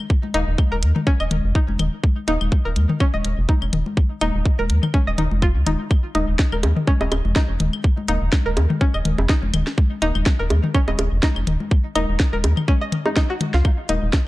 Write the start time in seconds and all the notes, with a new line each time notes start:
0.10 kick
0.23 high conga
0.34 D#1 A#3 D#4 D#5, closed hi-hat
0.47 D#1
0.58 kick, high conga, claves
0.72 D#1 A#4
0.83 D#2, closed hi-hat
0.96 mid tom, high conga
1.07 C#4, kick
1.20 D#1 D#5, claves
1.31 D#1, closed hi-hat, mid tom, high conga
1.44 F1
1.55 D#4, kick
1.68 F1, high conga
1.79 D#1, closed hi-hat, mid tom, claves
2.04 kick, high conga
2.28 D#1 A#3 D#4 D#5, closed hi-hat
2.41 D#1, high conga, claves
2.52 kick
2.65 D#1 A#4
2.76 D#2, closed hi-hat, high conga
2.89 mid tom
3.00 C#4, kick, claves
3.14 D#1 D#5, high conga
3.25 D#1, closed hi-hat
3.38 F1
3.49 D#4, kick, high conga
3.62 F1, claves
3.73 D#1, closed hi-hat, mid tom
3.86 high conga
3.97 kick
4.21 D#1 A#3 D#4 D#5, closed hi-hat, high conga, claves
4.35 D#1
4.46 kick
4.59 D#1 A#4, high conga
4.70 D#2, closed hi-hat
4.83 mid tom, claves
4.94 C#4, kick, high conga
5.07 D#1 D#5
5.18 D#1 D#4, closed hi-hat, mid tom
5.31 F1, high conga
5.42 F4, kick, claves
5.56 C#2
5.66 D#1 D#4, closed hi-hat, mid tom, high conga
5.91 kick, claves
6.15 D#1 A#3 D#4 D#5, closed hi-hat, high conga
6.28 D#1
6.39 kick, snare
6.52 D#1 A#4, high conga, claves
6.63 D#2, closed hi-hat, high bongo
6.76 mid tom
6.87 C#4, kick, high conga
7.01 D#1 D#5, high bongo
7.12 D#1, closed hi-hat, high bongo, claves
7.25 F1, high conga
7.36 D#4, kick, snare
7.49 F1
7.60 D#1, closed hi-hat, mid tom, high conga
7.73 claves
7.84 kick
7.97 high conga
8.08 D#1 A#3 D#4 D#5, closed hi-hat
8.22 D#1
8.33 kick, snare, high conga, claves
8.46 D#1 A#4
8.57 D#2, closed hi-hat, high bongo
8.70 mid tom, high conga
8.81 C#4, kick
8.94 D#1 D#5, claves
9.05 D#1, closed hi-hat, mid tom, high conga
9.18 F1, high bongo
9.29 D#4, kick, snare
9.43 F1, high conga
9.54 D#1, closed hi-hat, mid tom, claves
9.67 snare
9.78 kick, high conga
10.02 D#1 A#3 D#4 D#5, closed hi-hat
10.15 D#1, high conga, claves
10.26 kick, snare
10.39 D#1 A#4
10.50 D#2, closed hi-hat, high bongo, high conga
10.64 mid tom
10.74 C#4, kick, claves
10.88 D#1 D#5, high bongo, high conga
10.99 D#1, closed hi-hat, high bongo
11.12 F1
11.23 D#4, kick, snare, high conga
11.36 F1, claves
11.47 D#1, closed hi-hat, mid tom
11.60 high conga
11.71 kick
11.95 D#1 A#3 D#4 D#5, closed hi-hat, high conga, claves
12.09 D#1
12.20 kick, snare
12.33 D#1 A#4, high conga
12.44 D#2, closed hi-hat, high bongo
12.57 mid tom, claves
12.68 C#4, kick, high conga
12.81 D#5
12.92 closed hi-hat, mid tom
13.06 D#4, high bongo, high conga
13.16 D#4, kick, snare, claves
13.30 F#4
13.41 closed hi-hat, mid tom, high conga
13.54 C#2 F4, snare
13.65 kick, claves
13.89 D#1 A#3 D#4 D#5, closed hi-hat, high conga
14.02 D#1
14.13 kick, snare